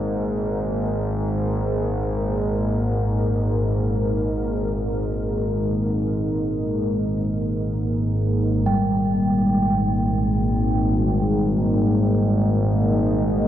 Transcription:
Already playing: G#1 G#2 A#3 A#4 D#5
8.67 G#1 G#2 G3 A#3 G5
9.38 A#4
10.95 D#5

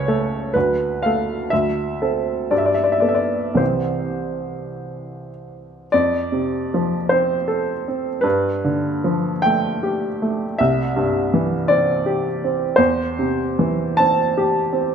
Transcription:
Already playing: C#2 C#5
0.08 A3 A4
0.54 D2 B4
1.02 A3 A4 F5
1.50 D2 E5
2.02 C4 A4
2.51 G2 D5
2.58 E5
2.66 D5
2.74 E5
2.84 D5
2.92 E5
3.00 B3 A4 D5
3.09 E5
3.15 D5
3.54 C2 E3 C4 G4 C5
5.92 F2 D5
6.32 C3
6.74 F3
7.09 C4 C5
7.48 A4
7.88 C4
8.21 G2 B4
8.64 D3
9.04 F3
9.42 A3 G5
9.83 G4
10.22 A3
10.58 C2 E5
10.96 G2
11.34 E3
11.68 C4 D5
12.06 G4
12.44 C4
12.76 E2 C5
13.19 C3
13.59 E3
13.97 C4 A5
14.37 G4
14.73 C4

